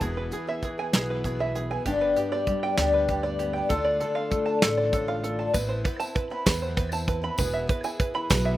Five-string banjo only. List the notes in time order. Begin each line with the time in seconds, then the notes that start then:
0.01 G#4
0.17 B4
0.33 G#4
0.49 E5
0.64 G#4
0.79 G#5
0.95 G#4
1.10 B4
1.25 G#4
1.40 E5
1.55 G#4
1.71 G#5
1.86 G4
2.01 B4
2.16 G4
2.32 D5
2.47 G4
2.63 G5
2.78 G4
2.94 B4
3.09 G4
3.23 D5
3.39 G4
3.53 G5
3.69 A4
3.84 D5
4.00 A4
4.15 F5
4.31 A4
4.46 A5
4.62 A4
4.77 D5
4.93 A4
5.08 F5
5.24 A4
5.39 A5
5.54 B4
5.69 C5
5.84 B4
6.00 A5
6.15 B4
6.31 B5
6.46 B4
6.62 C5
6.77 B4
6.93 A5
7.08 B4
7.24 B5
7.39 B4
7.54 E5
7.70 B4
7.84 G#5
8.00 B4
8.15 B5
8.30 B4
8.45 E5